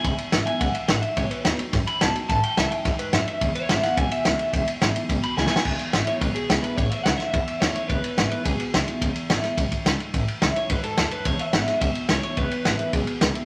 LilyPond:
<<
  \new Staff \with { instrumentName = "Clean electric guitar" } { \time 4/4 \key e \major \tempo 4 = 214 b''8 gis''8 fis''8 gis''8 fis''8 e''8 fis''8 e''8 | cis''8 b'4 r4 b''8 a''8 g''8 | a''8 g''8 e''8 g''8 e''8 b'8 e''8 e''8 | r8 cis''8 e''8 fis''8 gis''8 e''4.~ |
e''8 r2 b''8 gis''8 gis''8 | r4. cis''8 b'8 gis'4 b'8 | cis''8 e''8 fis''8 e''8 e''4 cis''8 cis''8 | b'4. b'8 gis'4. r8 |
r1 | r4. cis''8 b'8 a'4 b'8 | cis''8 e''8 fis''8 e''8 e''4 cis''8 cis''8 | b'4. b'8 gis'4. r8 | }
  \new Staff \with { instrumentName = "Steel-string acoustic guitar" } { \time 4/4 \key e \major << { r4 <e gis b e'>8 <b e'>8 r2 | r4 <fis b dis' fis'>8 <dis' fis'>8 r4 <fis b dis' fis'>8 <dis' fis'>8 | r4 <e a cis' e'>8 <cis' e'>8 r2 | r4 <e gis b e'>8 <b e'>8 r4 <e gis b e'>4 |
r4 <e gis b e'>8 <b e'>8 r4 <e gis b e'>8 <b e'>8 | r4 <e gis b e'>8 <b e'>8 r4 <e gis b e'>8 <b e'>8 | r4 <e a cis' e'>8 <cis' e'>8 r4 <e a cis' e'>8 <cis' e'>8 | r4 <e gis b e'>8 <b e'>8 r4 <e gis b e'>8 <b e'>8 |
r4 <e gis b e'>8 <b e'>8 r2 | r4 <e a cis' e'>8 <cis' e'>8 r2 | r4 <e gis b e'>4 r4 <e gis b e'>8 <b e'>8 | r4 <e gis b e'>8 <b e'>8 r4 <e gis b e'>8 <b e'>8 | } \\ { e,2 r4 a,4 | b,2 fis,2 | a,2 gis,4 fis,4 | e,2 b,2 |
e,2 b,2 | e,2 b,2 | a,2 e,2 | e,2 b,2 |
e,2 fis,4 gis,4 | a,2 gis,4 fis,4 | e,2 b,2 | e,2 b,2 | } >> }
  \new Staff \with { instrumentName = "Upright bass" } { \clef bass \time 4/4 \key e \major e,,8 r8 gis,,8 r8 b,,8 r8 a,,8 r8 | b,,8 r8 dis,8 r8 fis,8 r8 b,,8 r8 | a,,8 r8 cis,8 r8 e,8 r8 fis,8 r8 | e,,8 r8 gis,,8 r8 b,,8 r8 cis,8 r8 |
e,,8 r8 gis,,8 r8 b,,8 r8 cis,8 r8 | e,,8 r8 gis,,8 r8 b,,8 r8 cis,8 r8 | a,,8 r8 cis,8 r8 e,8 r8 dis,8 r8 | e,,8 r8 gis,,8 r8 b,,8 r8 cis,8 r8 |
e,,8 r8 gis,,8 r8 b,,8 r8 cis,8 r8 | a,,8 r8 cis,8 r8 e,8 r8 d,8 r8 | e,,8 r8 gis,,8 r8 b,,8 r8 cis,8 r8 | e,,8 r8 gis,,8 r8 b,,8 r8 cis,8 r8 | }
  \new DrumStaff \with { instrumentName = "Drums" } \drummode { \time 4/4 <bd cymr>8 cymr8 <cymr sn>8 cymr8 <bd cymr>8 cymr8 <cymr sn>8 cymr8 | <bd cymr>8 cymr8 <cymr sn>8 cymr8 <bd cymr sn>8 cymr8 <cymr sn>8 cymr8 | <bd cymr>8 cymr8 <cymr sn>8 cymr8 <bd cymr sn>8 cymr8 <cymr sn>8 cymr8 | <bd cymr>8 cymr8 <cymr sn>8 <cymr sn>8 <bd cymr>8 cymr8 <cymr sn>8 cymr8 |
<bd cymr>8 cymr8 <cymr sn>8 cymr8 <bd cymr>8 cymr8 \tuplet 3/2 { sn8 sn8 sn8 } | <cymc bd>8 cymr8 <cymr sn>8 cymr8 <bd cymr>8 cymr8 <cymr sn>8 cymr8 | <bd cymr>8 cymr8 <cymr sn>8 <cymr sn>8 <bd cymr>8 cymr8 <cymr sn>8 cymr8 | <bd cymr>8 cymr8 <cymr sn>8 cymr8 <bd cymr>8 cymr8 <cymr sn>8 cymr8 |
<bd cymr>8 cymr8 <cymr sn>8 <cymr sn>8 <bd cymr>8 <bd cymr>8 <cymr sn>8 cymr8 | <bd cymr>8 cymr8 <cymr sn>8 cymr8 <bd cymr>8 cymr8 <cymr sn>8 cymr8 | <bd cymr>8 cymr8 <cymr sn>8 <cymr sn>8 <bd cymr>8 cymr8 <cymr sn>8 cymr8 | <bd cymr>8 cymr8 <cymr sn>8 cymr8 <bd cymr>8 cymr8 <cymr sn>8 cymr8 | }
>>